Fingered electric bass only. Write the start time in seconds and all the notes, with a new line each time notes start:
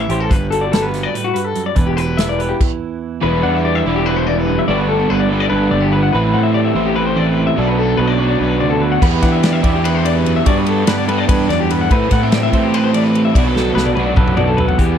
0.10 A1
0.31 G1
1.77 E1
3.24 E1
3.45 E2
3.85 E1
4.69 G1
5.11 G1
5.52 G1
5.72 G1
6.14 A1
6.34 A2
6.75 A1
7.58 B1
7.99 B1
8.40 B1
8.61 D2
9.02 E2
9.23 E3
9.64 E2
10.47 G2
10.88 G2
11.29 G2
11.50 E2
11.91 A2
12.11 A2
12.53 A2
13.35 B1
13.76 B1
14.17 B1
14.38 B1
14.79 E2